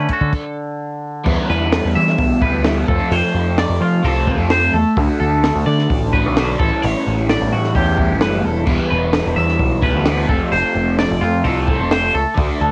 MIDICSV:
0, 0, Header, 1, 6, 480
1, 0, Start_track
1, 0, Tempo, 462963
1, 1312, Time_signature, 4, 2, 24, 8
1, 13184, End_track
2, 0, Start_track
2, 0, Title_t, "Clean electric guitar"
2, 0, Program_c, 0, 27
2, 0, Note_on_c, 0, 71, 74
2, 107, Note_off_c, 0, 71, 0
2, 107, Note_on_c, 0, 69, 82
2, 589, Note_off_c, 0, 69, 0
2, 1552, Note_on_c, 0, 71, 85
2, 2021, Note_off_c, 0, 71, 0
2, 2026, Note_on_c, 0, 76, 94
2, 2506, Note_off_c, 0, 76, 0
2, 2510, Note_on_c, 0, 71, 70
2, 2986, Note_off_c, 0, 71, 0
2, 2990, Note_on_c, 0, 69, 78
2, 3235, Note_off_c, 0, 69, 0
2, 3235, Note_on_c, 0, 72, 93
2, 3714, Note_off_c, 0, 72, 0
2, 3718, Note_on_c, 0, 74, 83
2, 3958, Note_off_c, 0, 74, 0
2, 3958, Note_on_c, 0, 65, 84
2, 4198, Note_off_c, 0, 65, 0
2, 4198, Note_on_c, 0, 69, 88
2, 4672, Note_on_c, 0, 72, 90
2, 4678, Note_off_c, 0, 69, 0
2, 4908, Note_on_c, 0, 69, 79
2, 4915, Note_off_c, 0, 72, 0
2, 5153, Note_off_c, 0, 69, 0
2, 5390, Note_on_c, 0, 69, 88
2, 5869, Note_on_c, 0, 74, 88
2, 5874, Note_off_c, 0, 69, 0
2, 6350, Note_off_c, 0, 74, 0
2, 6354, Note_on_c, 0, 71, 77
2, 6831, Note_off_c, 0, 71, 0
2, 6835, Note_on_c, 0, 69, 78
2, 7075, Note_off_c, 0, 69, 0
2, 7075, Note_on_c, 0, 73, 92
2, 7557, Note_off_c, 0, 73, 0
2, 7567, Note_on_c, 0, 74, 83
2, 7802, Note_on_c, 0, 66, 84
2, 7803, Note_off_c, 0, 74, 0
2, 8037, Note_off_c, 0, 66, 0
2, 8041, Note_on_c, 0, 67, 90
2, 8517, Note_off_c, 0, 67, 0
2, 8521, Note_on_c, 0, 71, 86
2, 8762, Note_off_c, 0, 71, 0
2, 8762, Note_on_c, 0, 69, 85
2, 9000, Note_off_c, 0, 69, 0
2, 9232, Note_on_c, 0, 71, 84
2, 9706, Note_on_c, 0, 76, 81
2, 9714, Note_off_c, 0, 71, 0
2, 10191, Note_off_c, 0, 76, 0
2, 10195, Note_on_c, 0, 71, 83
2, 10672, Note_on_c, 0, 69, 78
2, 10675, Note_off_c, 0, 71, 0
2, 10905, Note_on_c, 0, 72, 99
2, 10913, Note_off_c, 0, 69, 0
2, 11389, Note_off_c, 0, 72, 0
2, 11393, Note_on_c, 0, 74, 86
2, 11623, Note_on_c, 0, 65, 97
2, 11633, Note_off_c, 0, 74, 0
2, 11861, Note_off_c, 0, 65, 0
2, 11861, Note_on_c, 0, 69, 95
2, 12346, Note_off_c, 0, 69, 0
2, 12354, Note_on_c, 0, 72, 91
2, 12593, Note_off_c, 0, 72, 0
2, 12593, Note_on_c, 0, 69, 87
2, 12832, Note_off_c, 0, 69, 0
2, 13076, Note_on_c, 0, 69, 86
2, 13184, Note_off_c, 0, 69, 0
2, 13184, End_track
3, 0, Start_track
3, 0, Title_t, "Clean electric guitar"
3, 0, Program_c, 1, 27
3, 0, Note_on_c, 1, 50, 70
3, 0, Note_on_c, 1, 57, 63
3, 0, Note_on_c, 1, 61, 58
3, 133, Note_on_c, 1, 66, 67
3, 330, Note_off_c, 1, 57, 0
3, 331, Note_off_c, 1, 66, 0
3, 333, Note_off_c, 1, 61, 0
3, 2273, Note_off_c, 1, 50, 0
3, 13184, End_track
4, 0, Start_track
4, 0, Title_t, "Overdriven electric guitar"
4, 0, Program_c, 2, 29
4, 1285, Note_on_c, 2, 52, 95
4, 1301, Note_on_c, 2, 55, 101
4, 1313, Note_on_c, 2, 59, 109
4, 1327, Note_on_c, 2, 64, 113
4, 2481, Note_off_c, 2, 64, 0
4, 2487, Note_off_c, 2, 52, 0
4, 2493, Note_on_c, 2, 64, 85
4, 2495, Note_off_c, 2, 55, 0
4, 2501, Note_off_c, 2, 59, 0
4, 2515, Note_on_c, 2, 59, 94
4, 2526, Note_on_c, 2, 55, 80
4, 2536, Note_on_c, 2, 52, 74
4, 2722, Note_off_c, 2, 52, 0
4, 2730, Note_off_c, 2, 64, 0
4, 2735, Note_on_c, 2, 52, 79
4, 2737, Note_off_c, 2, 55, 0
4, 2741, Note_off_c, 2, 59, 0
4, 2749, Note_on_c, 2, 55, 87
4, 2762, Note_on_c, 2, 59, 75
4, 2770, Note_on_c, 2, 64, 96
4, 2960, Note_off_c, 2, 52, 0
4, 2964, Note_on_c, 2, 53, 94
4, 2978, Note_off_c, 2, 55, 0
4, 2983, Note_on_c, 2, 57, 92
4, 2985, Note_off_c, 2, 59, 0
4, 2988, Note_off_c, 2, 64, 0
4, 2998, Note_on_c, 2, 60, 84
4, 3007, Note_on_c, 2, 65, 100
4, 4164, Note_off_c, 2, 53, 0
4, 4177, Note_on_c, 2, 53, 84
4, 4184, Note_off_c, 2, 60, 0
4, 4188, Note_off_c, 2, 65, 0
4, 4190, Note_off_c, 2, 57, 0
4, 4194, Note_on_c, 2, 57, 86
4, 4207, Note_on_c, 2, 60, 96
4, 4221, Note_on_c, 2, 65, 93
4, 4413, Note_off_c, 2, 53, 0
4, 4413, Note_off_c, 2, 65, 0
4, 4425, Note_on_c, 2, 65, 100
4, 4427, Note_off_c, 2, 60, 0
4, 4438, Note_on_c, 2, 60, 98
4, 4449, Note_off_c, 2, 57, 0
4, 4453, Note_on_c, 2, 57, 85
4, 4470, Note_on_c, 2, 53, 78
4, 4897, Note_off_c, 2, 65, 0
4, 4904, Note_off_c, 2, 60, 0
4, 4920, Note_off_c, 2, 53, 0
4, 5147, Note_on_c, 2, 50, 101
4, 5155, Note_off_c, 2, 57, 0
4, 5159, Note_on_c, 2, 57, 107
4, 5175, Note_on_c, 2, 62, 98
4, 5186, Note_on_c, 2, 66, 103
4, 6339, Note_off_c, 2, 50, 0
4, 6345, Note_off_c, 2, 57, 0
4, 6347, Note_off_c, 2, 66, 0
4, 6359, Note_on_c, 2, 66, 93
4, 6364, Note_off_c, 2, 62, 0
4, 6368, Note_on_c, 2, 62, 81
4, 6380, Note_on_c, 2, 57, 89
4, 6398, Note_on_c, 2, 50, 81
4, 6579, Note_off_c, 2, 50, 0
4, 6585, Note_off_c, 2, 66, 0
4, 6592, Note_on_c, 2, 50, 75
4, 6595, Note_off_c, 2, 57, 0
4, 6608, Note_on_c, 2, 57, 84
4, 6621, Note_off_c, 2, 62, 0
4, 6625, Note_on_c, 2, 62, 85
4, 6633, Note_on_c, 2, 66, 100
4, 6821, Note_off_c, 2, 50, 0
4, 6829, Note_off_c, 2, 57, 0
4, 6833, Note_on_c, 2, 45, 93
4, 6842, Note_off_c, 2, 66, 0
4, 6842, Note_on_c, 2, 52, 106
4, 6854, Note_on_c, 2, 55, 100
4, 6863, Note_off_c, 2, 62, 0
4, 6867, Note_on_c, 2, 61, 107
4, 6873, Note_on_c, 2, 64, 105
4, 8016, Note_off_c, 2, 45, 0
4, 8029, Note_on_c, 2, 45, 92
4, 8039, Note_off_c, 2, 61, 0
4, 8042, Note_off_c, 2, 52, 0
4, 8046, Note_on_c, 2, 52, 84
4, 8050, Note_off_c, 2, 55, 0
4, 8054, Note_on_c, 2, 55, 87
4, 8056, Note_on_c, 2, 61, 85
4, 8067, Note_off_c, 2, 64, 0
4, 8071, Note_on_c, 2, 64, 95
4, 8259, Note_off_c, 2, 45, 0
4, 8260, Note_off_c, 2, 61, 0
4, 8260, Note_off_c, 2, 64, 0
4, 8264, Note_on_c, 2, 64, 92
4, 8272, Note_on_c, 2, 61, 80
4, 8284, Note_off_c, 2, 55, 0
4, 8288, Note_on_c, 2, 55, 77
4, 8293, Note_off_c, 2, 52, 0
4, 8297, Note_on_c, 2, 52, 80
4, 8305, Note_on_c, 2, 45, 72
4, 8741, Note_off_c, 2, 61, 0
4, 8757, Note_off_c, 2, 45, 0
4, 8976, Note_off_c, 2, 52, 0
4, 8980, Note_on_c, 2, 52, 104
4, 8991, Note_off_c, 2, 55, 0
4, 8995, Note_on_c, 2, 55, 104
4, 9007, Note_on_c, 2, 59, 104
4, 9015, Note_off_c, 2, 64, 0
4, 9019, Note_on_c, 2, 64, 103
4, 10164, Note_off_c, 2, 64, 0
4, 10173, Note_off_c, 2, 52, 0
4, 10177, Note_on_c, 2, 64, 98
4, 10181, Note_off_c, 2, 55, 0
4, 10181, Note_off_c, 2, 59, 0
4, 10193, Note_on_c, 2, 59, 91
4, 10209, Note_on_c, 2, 55, 86
4, 10215, Note_on_c, 2, 52, 79
4, 10406, Note_off_c, 2, 52, 0
4, 10412, Note_off_c, 2, 64, 0
4, 10419, Note_on_c, 2, 52, 83
4, 10420, Note_off_c, 2, 55, 0
4, 10420, Note_off_c, 2, 59, 0
4, 10433, Note_on_c, 2, 55, 86
4, 10444, Note_on_c, 2, 59, 80
4, 10457, Note_on_c, 2, 64, 81
4, 10653, Note_off_c, 2, 52, 0
4, 10659, Note_on_c, 2, 53, 91
4, 10660, Note_off_c, 2, 55, 0
4, 10665, Note_off_c, 2, 59, 0
4, 10672, Note_off_c, 2, 64, 0
4, 10677, Note_on_c, 2, 57, 101
4, 10686, Note_on_c, 2, 60, 105
4, 10705, Note_on_c, 2, 65, 92
4, 11839, Note_off_c, 2, 53, 0
4, 11851, Note_on_c, 2, 53, 78
4, 11864, Note_off_c, 2, 60, 0
4, 11867, Note_off_c, 2, 57, 0
4, 11871, Note_on_c, 2, 57, 81
4, 11873, Note_off_c, 2, 65, 0
4, 11883, Note_on_c, 2, 60, 91
4, 11893, Note_on_c, 2, 65, 90
4, 12074, Note_off_c, 2, 65, 0
4, 12086, Note_off_c, 2, 60, 0
4, 12087, Note_off_c, 2, 53, 0
4, 12087, Note_on_c, 2, 65, 95
4, 12098, Note_on_c, 2, 60, 81
4, 12110, Note_off_c, 2, 57, 0
4, 12114, Note_on_c, 2, 57, 83
4, 12128, Note_on_c, 2, 53, 81
4, 12564, Note_off_c, 2, 65, 0
4, 12570, Note_off_c, 2, 60, 0
4, 12585, Note_off_c, 2, 53, 0
4, 12800, Note_on_c, 2, 50, 96
4, 12809, Note_off_c, 2, 57, 0
4, 12813, Note_on_c, 2, 57, 111
4, 12828, Note_on_c, 2, 62, 111
4, 12841, Note_on_c, 2, 66, 113
4, 13184, Note_off_c, 2, 50, 0
4, 13184, Note_off_c, 2, 57, 0
4, 13184, Note_off_c, 2, 62, 0
4, 13184, Note_off_c, 2, 66, 0
4, 13184, End_track
5, 0, Start_track
5, 0, Title_t, "Picked electric bass"
5, 0, Program_c, 3, 34
5, 216, Note_on_c, 3, 50, 90
5, 323, Note_off_c, 3, 50, 0
5, 1308, Note_on_c, 3, 40, 101
5, 1411, Note_off_c, 3, 40, 0
5, 1551, Note_on_c, 3, 40, 90
5, 1858, Note_off_c, 3, 40, 0
5, 1918, Note_on_c, 3, 40, 91
5, 2018, Note_off_c, 3, 40, 0
5, 2035, Note_on_c, 3, 52, 96
5, 2238, Note_off_c, 3, 52, 0
5, 2266, Note_on_c, 3, 35, 93
5, 2626, Note_off_c, 3, 35, 0
5, 2626, Note_on_c, 3, 38, 90
5, 2936, Note_off_c, 3, 38, 0
5, 2993, Note_on_c, 3, 41, 78
5, 3096, Note_off_c, 3, 41, 0
5, 3227, Note_on_c, 3, 41, 104
5, 3332, Note_off_c, 3, 41, 0
5, 3468, Note_on_c, 3, 41, 92
5, 3777, Note_off_c, 3, 41, 0
5, 3830, Note_on_c, 3, 41, 102
5, 3935, Note_off_c, 3, 41, 0
5, 3945, Note_on_c, 3, 53, 96
5, 4154, Note_off_c, 3, 53, 0
5, 4196, Note_on_c, 3, 36, 102
5, 4550, Note_off_c, 3, 36, 0
5, 4550, Note_on_c, 3, 41, 87
5, 4858, Note_off_c, 3, 41, 0
5, 4910, Note_on_c, 3, 40, 77
5, 5015, Note_off_c, 3, 40, 0
5, 5158, Note_on_c, 3, 38, 106
5, 5259, Note_off_c, 3, 38, 0
5, 5395, Note_on_c, 3, 38, 87
5, 5702, Note_off_c, 3, 38, 0
5, 5758, Note_on_c, 3, 38, 106
5, 5860, Note_off_c, 3, 38, 0
5, 5875, Note_on_c, 3, 50, 103
5, 6080, Note_off_c, 3, 50, 0
5, 6123, Note_on_c, 3, 33, 94
5, 6489, Note_off_c, 3, 33, 0
5, 6489, Note_on_c, 3, 35, 98
5, 6790, Note_off_c, 3, 35, 0
5, 6840, Note_on_c, 3, 33, 80
5, 6941, Note_off_c, 3, 33, 0
5, 7093, Note_on_c, 3, 33, 106
5, 7188, Note_off_c, 3, 33, 0
5, 7329, Note_on_c, 3, 33, 92
5, 7630, Note_off_c, 3, 33, 0
5, 7686, Note_on_c, 3, 33, 96
5, 7785, Note_off_c, 3, 33, 0
5, 7808, Note_on_c, 3, 45, 90
5, 8008, Note_off_c, 3, 45, 0
5, 8037, Note_on_c, 3, 40, 103
5, 8401, Note_on_c, 3, 33, 96
5, 8417, Note_off_c, 3, 40, 0
5, 8502, Note_off_c, 3, 33, 0
5, 8529, Note_on_c, 3, 30, 90
5, 8740, Note_off_c, 3, 30, 0
5, 8759, Note_on_c, 3, 28, 76
5, 8975, Note_off_c, 3, 28, 0
5, 8994, Note_on_c, 3, 28, 99
5, 9097, Note_off_c, 3, 28, 0
5, 9245, Note_on_c, 3, 28, 91
5, 9547, Note_off_c, 3, 28, 0
5, 9599, Note_on_c, 3, 28, 100
5, 9700, Note_off_c, 3, 28, 0
5, 9707, Note_on_c, 3, 40, 95
5, 9915, Note_off_c, 3, 40, 0
5, 9950, Note_on_c, 3, 35, 89
5, 10314, Note_off_c, 3, 35, 0
5, 10314, Note_on_c, 3, 38, 96
5, 10620, Note_off_c, 3, 38, 0
5, 10675, Note_on_c, 3, 29, 73
5, 10777, Note_off_c, 3, 29, 0
5, 10909, Note_on_c, 3, 29, 105
5, 11013, Note_off_c, 3, 29, 0
5, 11145, Note_on_c, 3, 29, 97
5, 11454, Note_off_c, 3, 29, 0
5, 11516, Note_on_c, 3, 29, 108
5, 11617, Note_off_c, 3, 29, 0
5, 11635, Note_on_c, 3, 41, 100
5, 11837, Note_off_c, 3, 41, 0
5, 11869, Note_on_c, 3, 36, 95
5, 12230, Note_on_c, 3, 29, 97
5, 12245, Note_off_c, 3, 36, 0
5, 12536, Note_off_c, 3, 29, 0
5, 12590, Note_on_c, 3, 37, 82
5, 12692, Note_off_c, 3, 37, 0
5, 12837, Note_on_c, 3, 38, 109
5, 12936, Note_off_c, 3, 38, 0
5, 13071, Note_on_c, 3, 38, 98
5, 13184, Note_off_c, 3, 38, 0
5, 13184, End_track
6, 0, Start_track
6, 0, Title_t, "Drums"
6, 87, Note_on_c, 9, 42, 60
6, 95, Note_on_c, 9, 36, 80
6, 191, Note_off_c, 9, 42, 0
6, 199, Note_off_c, 9, 36, 0
6, 217, Note_on_c, 9, 36, 74
6, 320, Note_off_c, 9, 36, 0
6, 337, Note_on_c, 9, 49, 76
6, 338, Note_on_c, 9, 36, 86
6, 441, Note_off_c, 9, 36, 0
6, 441, Note_off_c, 9, 49, 0
6, 1302, Note_on_c, 9, 49, 109
6, 1305, Note_on_c, 9, 36, 119
6, 1406, Note_off_c, 9, 49, 0
6, 1409, Note_off_c, 9, 36, 0
6, 1787, Note_on_c, 9, 46, 67
6, 1788, Note_on_c, 9, 38, 122
6, 1891, Note_off_c, 9, 46, 0
6, 1892, Note_off_c, 9, 38, 0
6, 2147, Note_on_c, 9, 38, 27
6, 2251, Note_off_c, 9, 38, 0
6, 2259, Note_on_c, 9, 46, 63
6, 2266, Note_on_c, 9, 36, 78
6, 2363, Note_off_c, 9, 46, 0
6, 2370, Note_off_c, 9, 36, 0
6, 2506, Note_on_c, 9, 36, 87
6, 2609, Note_off_c, 9, 36, 0
6, 2741, Note_on_c, 9, 46, 72
6, 2742, Note_on_c, 9, 38, 118
6, 2845, Note_off_c, 9, 46, 0
6, 2846, Note_off_c, 9, 38, 0
6, 2990, Note_on_c, 9, 36, 106
6, 3093, Note_off_c, 9, 36, 0
6, 3230, Note_on_c, 9, 46, 65
6, 3334, Note_off_c, 9, 46, 0
6, 3711, Note_on_c, 9, 46, 69
6, 3712, Note_on_c, 9, 38, 115
6, 3814, Note_off_c, 9, 46, 0
6, 3816, Note_off_c, 9, 38, 0
6, 4193, Note_on_c, 9, 36, 84
6, 4193, Note_on_c, 9, 46, 57
6, 4296, Note_off_c, 9, 36, 0
6, 4296, Note_off_c, 9, 46, 0
6, 4433, Note_on_c, 9, 36, 86
6, 4537, Note_off_c, 9, 36, 0
6, 4668, Note_on_c, 9, 46, 61
6, 4669, Note_on_c, 9, 38, 117
6, 4771, Note_off_c, 9, 46, 0
6, 4772, Note_off_c, 9, 38, 0
6, 5154, Note_on_c, 9, 36, 112
6, 5158, Note_on_c, 9, 46, 62
6, 5257, Note_off_c, 9, 36, 0
6, 5262, Note_off_c, 9, 46, 0
6, 5637, Note_on_c, 9, 46, 65
6, 5638, Note_on_c, 9, 38, 114
6, 5741, Note_off_c, 9, 46, 0
6, 5742, Note_off_c, 9, 38, 0
6, 5999, Note_on_c, 9, 38, 27
6, 6103, Note_off_c, 9, 38, 0
6, 6118, Note_on_c, 9, 36, 85
6, 6120, Note_on_c, 9, 46, 64
6, 6222, Note_off_c, 9, 36, 0
6, 6224, Note_off_c, 9, 46, 0
6, 6357, Note_on_c, 9, 36, 82
6, 6461, Note_off_c, 9, 36, 0
6, 6602, Note_on_c, 9, 46, 66
6, 6603, Note_on_c, 9, 38, 117
6, 6705, Note_off_c, 9, 46, 0
6, 6706, Note_off_c, 9, 38, 0
6, 6839, Note_on_c, 9, 36, 105
6, 6943, Note_off_c, 9, 36, 0
6, 7082, Note_on_c, 9, 46, 68
6, 7186, Note_off_c, 9, 46, 0
6, 7562, Note_on_c, 9, 46, 67
6, 7563, Note_on_c, 9, 38, 111
6, 7666, Note_off_c, 9, 46, 0
6, 7667, Note_off_c, 9, 38, 0
6, 7921, Note_on_c, 9, 38, 32
6, 8025, Note_off_c, 9, 38, 0
6, 8036, Note_on_c, 9, 36, 82
6, 8039, Note_on_c, 9, 46, 64
6, 8140, Note_off_c, 9, 36, 0
6, 8143, Note_off_c, 9, 46, 0
6, 8276, Note_on_c, 9, 36, 74
6, 8379, Note_off_c, 9, 36, 0
6, 8511, Note_on_c, 9, 46, 65
6, 8512, Note_on_c, 9, 38, 115
6, 8615, Note_off_c, 9, 46, 0
6, 8616, Note_off_c, 9, 38, 0
6, 8987, Note_on_c, 9, 49, 105
6, 8991, Note_on_c, 9, 36, 108
6, 9090, Note_off_c, 9, 49, 0
6, 9095, Note_off_c, 9, 36, 0
6, 9468, Note_on_c, 9, 46, 63
6, 9470, Note_on_c, 9, 38, 112
6, 9572, Note_off_c, 9, 46, 0
6, 9573, Note_off_c, 9, 38, 0
6, 9835, Note_on_c, 9, 38, 29
6, 9939, Note_off_c, 9, 38, 0
6, 9950, Note_on_c, 9, 36, 82
6, 9950, Note_on_c, 9, 46, 55
6, 10053, Note_off_c, 9, 36, 0
6, 10054, Note_off_c, 9, 46, 0
6, 10189, Note_on_c, 9, 36, 82
6, 10293, Note_off_c, 9, 36, 0
6, 10428, Note_on_c, 9, 46, 63
6, 10429, Note_on_c, 9, 38, 112
6, 10532, Note_off_c, 9, 46, 0
6, 10533, Note_off_c, 9, 38, 0
6, 10671, Note_on_c, 9, 36, 99
6, 10774, Note_off_c, 9, 36, 0
6, 10914, Note_on_c, 9, 46, 72
6, 11017, Note_off_c, 9, 46, 0
6, 11391, Note_on_c, 9, 46, 72
6, 11392, Note_on_c, 9, 38, 112
6, 11495, Note_off_c, 9, 46, 0
6, 11496, Note_off_c, 9, 38, 0
6, 11867, Note_on_c, 9, 46, 61
6, 11870, Note_on_c, 9, 36, 77
6, 11970, Note_off_c, 9, 46, 0
6, 11973, Note_off_c, 9, 36, 0
6, 12110, Note_on_c, 9, 36, 84
6, 12214, Note_off_c, 9, 36, 0
6, 12349, Note_on_c, 9, 46, 65
6, 12350, Note_on_c, 9, 38, 118
6, 12453, Note_off_c, 9, 46, 0
6, 12454, Note_off_c, 9, 38, 0
6, 12830, Note_on_c, 9, 36, 118
6, 12830, Note_on_c, 9, 46, 66
6, 12934, Note_off_c, 9, 36, 0
6, 12934, Note_off_c, 9, 46, 0
6, 13184, End_track
0, 0, End_of_file